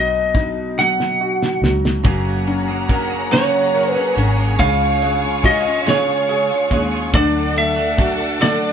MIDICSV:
0, 0, Header, 1, 7, 480
1, 0, Start_track
1, 0, Key_signature, 6, "major"
1, 0, Tempo, 848057
1, 1158, Time_signature, 6, 3, 24, 8
1, 4939, End_track
2, 0, Start_track
2, 0, Title_t, "String section"
2, 0, Program_c, 0, 48
2, 1157, Note_on_c, 0, 78, 76
2, 1158, Note_on_c, 0, 73, 78
2, 1160, Note_on_c, 0, 68, 82
2, 1160, Note_on_c, 0, 82, 88
2, 2584, Note_off_c, 0, 78, 0
2, 2585, Note_off_c, 0, 82, 0
2, 2597, Note_on_c, 0, 85, 89
2, 2599, Note_on_c, 0, 77, 73
2, 4017, Note_off_c, 0, 73, 0
2, 4019, Note_off_c, 0, 68, 0
2, 4025, Note_off_c, 0, 85, 0
2, 4026, Note_off_c, 0, 77, 0
2, 4037, Note_on_c, 0, 81, 90
2, 4038, Note_on_c, 0, 62, 79
2, 4038, Note_on_c, 0, 69, 83
2, 4038, Note_on_c, 0, 78, 79
2, 4939, Note_off_c, 0, 62, 0
2, 4939, Note_off_c, 0, 69, 0
2, 4939, Note_off_c, 0, 78, 0
2, 4939, Note_off_c, 0, 81, 0
2, 4939, End_track
3, 0, Start_track
3, 0, Title_t, "Lead electric guitar"
3, 0, Program_c, 1, 29
3, 0, Note_on_c, 1, 75, 95
3, 446, Note_on_c, 1, 78, 99
3, 460, Note_off_c, 1, 75, 0
3, 959, Note_off_c, 1, 78, 0
3, 1884, Note_on_c, 1, 73, 112
3, 2212, Note_off_c, 1, 73, 0
3, 2212, Note_on_c, 1, 71, 112
3, 2339, Note_off_c, 1, 71, 0
3, 2602, Note_on_c, 1, 77, 100
3, 3088, Note_on_c, 1, 75, 97
3, 3095, Note_off_c, 1, 77, 0
3, 3330, Note_off_c, 1, 75, 0
3, 3332, Note_on_c, 1, 73, 91
3, 3844, Note_off_c, 1, 73, 0
3, 4047, Note_on_c, 1, 74, 107
3, 4288, Note_off_c, 1, 74, 0
3, 4290, Note_on_c, 1, 76, 102
3, 4763, Note_off_c, 1, 76, 0
3, 4765, Note_on_c, 1, 74, 99
3, 4939, Note_off_c, 1, 74, 0
3, 4939, End_track
4, 0, Start_track
4, 0, Title_t, "Clean electric guitar"
4, 0, Program_c, 2, 27
4, 1153, Note_on_c, 2, 42, 95
4, 1157, Note_on_c, 2, 49, 88
4, 1159, Note_on_c, 2, 54, 93
4, 1161, Note_on_c, 2, 58, 93
4, 1163, Note_on_c, 2, 61, 108
4, 1166, Note_on_c, 2, 68, 97
4, 1508, Note_off_c, 2, 68, 0
4, 1514, Note_off_c, 2, 61, 0
4, 1515, Note_on_c, 2, 68, 65
4, 1516, Note_off_c, 2, 42, 0
4, 1518, Note_off_c, 2, 49, 0
4, 1519, Note_off_c, 2, 54, 0
4, 1520, Note_off_c, 2, 58, 0
4, 1521, Note_on_c, 2, 61, 58
4, 1526, Note_on_c, 2, 58, 57
4, 1532, Note_on_c, 2, 54, 55
4, 1627, Note_off_c, 2, 54, 0
4, 1634, Note_off_c, 2, 58, 0
4, 1634, Note_on_c, 2, 54, 76
4, 1637, Note_off_c, 2, 68, 0
4, 1638, Note_off_c, 2, 61, 0
4, 1641, Note_on_c, 2, 58, 77
4, 1645, Note_on_c, 2, 61, 84
4, 1650, Note_on_c, 2, 68, 76
4, 1747, Note_off_c, 2, 68, 0
4, 1754, Note_off_c, 2, 61, 0
4, 1754, Note_on_c, 2, 68, 58
4, 1756, Note_off_c, 2, 54, 0
4, 1760, Note_off_c, 2, 58, 0
4, 1760, Note_on_c, 2, 61, 55
4, 1766, Note_on_c, 2, 58, 49
4, 1770, Note_on_c, 2, 54, 46
4, 1873, Note_off_c, 2, 54, 0
4, 1874, Note_on_c, 2, 42, 80
4, 1876, Note_off_c, 2, 58, 0
4, 1876, Note_off_c, 2, 61, 0
4, 1876, Note_off_c, 2, 68, 0
4, 1877, Note_on_c, 2, 49, 90
4, 1880, Note_on_c, 2, 54, 88
4, 1883, Note_on_c, 2, 58, 95
4, 1883, Note_on_c, 2, 61, 91
4, 1886, Note_on_c, 2, 68, 87
4, 2226, Note_off_c, 2, 68, 0
4, 2233, Note_off_c, 2, 61, 0
4, 2233, Note_on_c, 2, 68, 63
4, 2236, Note_off_c, 2, 42, 0
4, 2236, Note_off_c, 2, 58, 0
4, 2238, Note_off_c, 2, 49, 0
4, 2239, Note_off_c, 2, 54, 0
4, 2239, Note_on_c, 2, 61, 58
4, 2243, Note_on_c, 2, 58, 49
4, 2248, Note_on_c, 2, 54, 49
4, 2345, Note_off_c, 2, 54, 0
4, 2352, Note_off_c, 2, 58, 0
4, 2352, Note_on_c, 2, 54, 66
4, 2356, Note_off_c, 2, 68, 0
4, 2357, Note_off_c, 2, 61, 0
4, 2359, Note_on_c, 2, 58, 69
4, 2364, Note_on_c, 2, 61, 73
4, 2368, Note_on_c, 2, 68, 77
4, 2468, Note_off_c, 2, 68, 0
4, 2474, Note_off_c, 2, 61, 0
4, 2474, Note_on_c, 2, 68, 61
4, 2475, Note_off_c, 2, 54, 0
4, 2479, Note_off_c, 2, 58, 0
4, 2480, Note_on_c, 2, 61, 55
4, 2485, Note_on_c, 2, 58, 57
4, 2491, Note_on_c, 2, 54, 47
4, 2595, Note_off_c, 2, 61, 0
4, 2597, Note_off_c, 2, 68, 0
4, 2597, Note_on_c, 2, 49, 80
4, 2598, Note_off_c, 2, 54, 0
4, 2600, Note_off_c, 2, 58, 0
4, 2600, Note_on_c, 2, 56, 84
4, 2602, Note_on_c, 2, 61, 80
4, 2605, Note_on_c, 2, 65, 85
4, 2608, Note_on_c, 2, 68, 93
4, 2946, Note_off_c, 2, 68, 0
4, 2953, Note_on_c, 2, 68, 57
4, 2955, Note_off_c, 2, 65, 0
4, 2958, Note_off_c, 2, 49, 0
4, 2960, Note_off_c, 2, 56, 0
4, 2961, Note_off_c, 2, 61, 0
4, 2962, Note_on_c, 2, 65, 50
4, 2970, Note_on_c, 2, 61, 50
4, 3074, Note_off_c, 2, 61, 0
4, 3074, Note_on_c, 2, 56, 69
4, 3076, Note_off_c, 2, 68, 0
4, 3079, Note_off_c, 2, 65, 0
4, 3081, Note_on_c, 2, 61, 68
4, 3086, Note_on_c, 2, 65, 69
4, 3091, Note_on_c, 2, 68, 77
4, 3186, Note_off_c, 2, 68, 0
4, 3193, Note_on_c, 2, 68, 58
4, 3195, Note_off_c, 2, 65, 0
4, 3197, Note_off_c, 2, 56, 0
4, 3200, Note_off_c, 2, 61, 0
4, 3202, Note_on_c, 2, 65, 53
4, 3210, Note_on_c, 2, 61, 48
4, 3315, Note_off_c, 2, 61, 0
4, 3316, Note_off_c, 2, 68, 0
4, 3316, Note_on_c, 2, 49, 86
4, 3318, Note_off_c, 2, 65, 0
4, 3320, Note_on_c, 2, 56, 91
4, 3322, Note_on_c, 2, 61, 91
4, 3325, Note_on_c, 2, 65, 98
4, 3327, Note_on_c, 2, 68, 95
4, 3668, Note_off_c, 2, 68, 0
4, 3675, Note_on_c, 2, 68, 59
4, 3677, Note_off_c, 2, 65, 0
4, 3678, Note_off_c, 2, 49, 0
4, 3680, Note_off_c, 2, 56, 0
4, 3681, Note_off_c, 2, 61, 0
4, 3684, Note_on_c, 2, 65, 55
4, 3690, Note_on_c, 2, 61, 45
4, 3795, Note_off_c, 2, 61, 0
4, 3795, Note_on_c, 2, 56, 65
4, 3798, Note_off_c, 2, 68, 0
4, 3800, Note_off_c, 2, 65, 0
4, 3802, Note_on_c, 2, 61, 68
4, 3807, Note_on_c, 2, 65, 67
4, 3812, Note_on_c, 2, 68, 70
4, 3907, Note_off_c, 2, 68, 0
4, 3914, Note_on_c, 2, 68, 58
4, 3917, Note_off_c, 2, 56, 0
4, 3917, Note_off_c, 2, 65, 0
4, 3921, Note_off_c, 2, 61, 0
4, 3923, Note_on_c, 2, 65, 58
4, 3930, Note_on_c, 2, 61, 54
4, 4037, Note_off_c, 2, 68, 0
4, 4037, Note_on_c, 2, 50, 81
4, 4039, Note_on_c, 2, 54, 84
4, 4040, Note_off_c, 2, 61, 0
4, 4042, Note_off_c, 2, 65, 0
4, 4042, Note_on_c, 2, 57, 84
4, 4045, Note_on_c, 2, 62, 85
4, 4048, Note_on_c, 2, 66, 98
4, 4387, Note_off_c, 2, 66, 0
4, 4394, Note_on_c, 2, 66, 61
4, 4396, Note_off_c, 2, 62, 0
4, 4399, Note_off_c, 2, 50, 0
4, 4400, Note_off_c, 2, 54, 0
4, 4402, Note_off_c, 2, 57, 0
4, 4403, Note_on_c, 2, 62, 52
4, 4410, Note_on_c, 2, 57, 45
4, 4512, Note_off_c, 2, 57, 0
4, 4513, Note_on_c, 2, 54, 69
4, 4517, Note_off_c, 2, 62, 0
4, 4517, Note_off_c, 2, 66, 0
4, 4519, Note_on_c, 2, 57, 66
4, 4524, Note_on_c, 2, 62, 70
4, 4530, Note_on_c, 2, 66, 75
4, 4627, Note_off_c, 2, 66, 0
4, 4634, Note_on_c, 2, 66, 60
4, 4636, Note_off_c, 2, 62, 0
4, 4637, Note_off_c, 2, 54, 0
4, 4640, Note_off_c, 2, 57, 0
4, 4643, Note_on_c, 2, 62, 56
4, 4652, Note_on_c, 2, 57, 48
4, 4755, Note_off_c, 2, 57, 0
4, 4756, Note_on_c, 2, 50, 89
4, 4757, Note_off_c, 2, 66, 0
4, 4758, Note_off_c, 2, 62, 0
4, 4760, Note_on_c, 2, 54, 98
4, 4762, Note_on_c, 2, 57, 95
4, 4765, Note_on_c, 2, 62, 91
4, 4767, Note_on_c, 2, 66, 100
4, 4939, Note_off_c, 2, 50, 0
4, 4939, Note_off_c, 2, 54, 0
4, 4939, Note_off_c, 2, 57, 0
4, 4939, Note_off_c, 2, 62, 0
4, 4939, Note_off_c, 2, 66, 0
4, 4939, End_track
5, 0, Start_track
5, 0, Title_t, "Felt piano"
5, 0, Program_c, 3, 0
5, 0, Control_c, 3, 64, 127
5, 0, Note_on_c, 3, 47, 75
5, 0, Note_on_c, 3, 54, 59
5, 201, Note_on_c, 3, 63, 61
5, 431, Note_off_c, 3, 54, 0
5, 440, Note_on_c, 3, 54, 59
5, 684, Note_on_c, 3, 66, 65
5, 916, Note_off_c, 3, 54, 0
5, 924, Note_on_c, 3, 54, 59
5, 1137, Note_off_c, 3, 63, 0
5, 1138, Note_off_c, 3, 47, 0
5, 1147, Note_off_c, 3, 66, 0
5, 1153, Note_off_c, 3, 54, 0
5, 1162, Note_on_c, 3, 54, 69
5, 1166, Control_c, 3, 64, 0
5, 1279, Control_c, 3, 64, 127
5, 1402, Note_on_c, 3, 61, 61
5, 1644, Note_on_c, 3, 70, 64
5, 1877, Note_off_c, 3, 61, 0
5, 1885, Note_on_c, 3, 61, 58
5, 2112, Note_off_c, 3, 70, 0
5, 2121, Note_on_c, 3, 70, 65
5, 2356, Note_off_c, 3, 61, 0
5, 2364, Note_on_c, 3, 61, 63
5, 2578, Note_off_c, 3, 54, 0
5, 2586, Note_off_c, 3, 70, 0
5, 2595, Note_off_c, 3, 61, 0
5, 2602, Note_on_c, 3, 49, 74
5, 2607, Control_c, 3, 64, 0
5, 2693, Control_c, 3, 64, 127
5, 2843, Note_on_c, 3, 56, 57
5, 3083, Note_on_c, 3, 65, 60
5, 3314, Note_off_c, 3, 56, 0
5, 3322, Note_on_c, 3, 56, 59
5, 3560, Note_on_c, 3, 68, 64
5, 3798, Note_off_c, 3, 56, 0
5, 3806, Note_on_c, 3, 56, 61
5, 4019, Note_off_c, 3, 49, 0
5, 4020, Note_off_c, 3, 65, 0
5, 4026, Note_off_c, 3, 68, 0
5, 4036, Note_off_c, 3, 56, 0
5, 4046, Note_on_c, 3, 50, 79
5, 4047, Control_c, 3, 64, 0
5, 4154, Control_c, 3, 64, 127
5, 4285, Note_on_c, 3, 57, 61
5, 4525, Note_on_c, 3, 66, 60
5, 4759, Note_off_c, 3, 57, 0
5, 4767, Note_on_c, 3, 57, 61
5, 4939, Note_off_c, 3, 50, 0
5, 4939, Note_off_c, 3, 57, 0
5, 4939, Note_off_c, 3, 66, 0
5, 4939, End_track
6, 0, Start_track
6, 0, Title_t, "Fingered electric bass"
6, 0, Program_c, 4, 33
6, 0, Note_on_c, 4, 35, 113
6, 895, Note_off_c, 4, 35, 0
6, 916, Note_on_c, 4, 37, 93
6, 1142, Note_off_c, 4, 37, 0
6, 1159, Note_on_c, 4, 30, 114
6, 2337, Note_off_c, 4, 30, 0
6, 2360, Note_on_c, 4, 32, 99
6, 2585, Note_off_c, 4, 32, 0
6, 2599, Note_on_c, 4, 37, 119
6, 3777, Note_off_c, 4, 37, 0
6, 3798, Note_on_c, 4, 39, 95
6, 4025, Note_off_c, 4, 39, 0
6, 4039, Note_on_c, 4, 38, 120
6, 4939, Note_off_c, 4, 38, 0
6, 4939, End_track
7, 0, Start_track
7, 0, Title_t, "Drums"
7, 195, Note_on_c, 9, 51, 50
7, 196, Note_on_c, 9, 36, 95
7, 207, Note_on_c, 9, 38, 40
7, 252, Note_off_c, 9, 51, 0
7, 253, Note_off_c, 9, 36, 0
7, 264, Note_off_c, 9, 38, 0
7, 445, Note_on_c, 9, 38, 64
7, 502, Note_off_c, 9, 38, 0
7, 566, Note_on_c, 9, 38, 64
7, 623, Note_off_c, 9, 38, 0
7, 806, Note_on_c, 9, 38, 89
7, 863, Note_off_c, 9, 38, 0
7, 927, Note_on_c, 9, 38, 102
7, 983, Note_off_c, 9, 38, 0
7, 1048, Note_on_c, 9, 38, 98
7, 1105, Note_off_c, 9, 38, 0
7, 1158, Note_on_c, 9, 51, 80
7, 1159, Note_on_c, 9, 36, 119
7, 1214, Note_off_c, 9, 51, 0
7, 1215, Note_off_c, 9, 36, 0
7, 1399, Note_on_c, 9, 51, 55
7, 1456, Note_off_c, 9, 51, 0
7, 1637, Note_on_c, 9, 36, 101
7, 1637, Note_on_c, 9, 51, 48
7, 1693, Note_off_c, 9, 51, 0
7, 1694, Note_off_c, 9, 36, 0
7, 1879, Note_on_c, 9, 51, 71
7, 1888, Note_on_c, 9, 38, 109
7, 1936, Note_off_c, 9, 51, 0
7, 1944, Note_off_c, 9, 38, 0
7, 2122, Note_on_c, 9, 51, 52
7, 2178, Note_off_c, 9, 51, 0
7, 2365, Note_on_c, 9, 51, 46
7, 2421, Note_off_c, 9, 51, 0
7, 2600, Note_on_c, 9, 36, 118
7, 2600, Note_on_c, 9, 51, 77
7, 2656, Note_off_c, 9, 36, 0
7, 2657, Note_off_c, 9, 51, 0
7, 2841, Note_on_c, 9, 51, 53
7, 2897, Note_off_c, 9, 51, 0
7, 3078, Note_on_c, 9, 36, 98
7, 3078, Note_on_c, 9, 51, 48
7, 3090, Note_on_c, 9, 38, 40
7, 3135, Note_off_c, 9, 36, 0
7, 3135, Note_off_c, 9, 51, 0
7, 3146, Note_off_c, 9, 38, 0
7, 3320, Note_on_c, 9, 51, 68
7, 3329, Note_on_c, 9, 38, 106
7, 3377, Note_off_c, 9, 51, 0
7, 3385, Note_off_c, 9, 38, 0
7, 3560, Note_on_c, 9, 51, 53
7, 3616, Note_off_c, 9, 51, 0
7, 3798, Note_on_c, 9, 36, 86
7, 3802, Note_on_c, 9, 51, 46
7, 3855, Note_off_c, 9, 36, 0
7, 3859, Note_off_c, 9, 51, 0
7, 4038, Note_on_c, 9, 51, 79
7, 4040, Note_on_c, 9, 36, 121
7, 4095, Note_off_c, 9, 51, 0
7, 4096, Note_off_c, 9, 36, 0
7, 4280, Note_on_c, 9, 51, 54
7, 4337, Note_off_c, 9, 51, 0
7, 4519, Note_on_c, 9, 36, 101
7, 4520, Note_on_c, 9, 51, 50
7, 4576, Note_off_c, 9, 36, 0
7, 4576, Note_off_c, 9, 51, 0
7, 4761, Note_on_c, 9, 51, 69
7, 4770, Note_on_c, 9, 38, 113
7, 4818, Note_off_c, 9, 51, 0
7, 4827, Note_off_c, 9, 38, 0
7, 4939, End_track
0, 0, End_of_file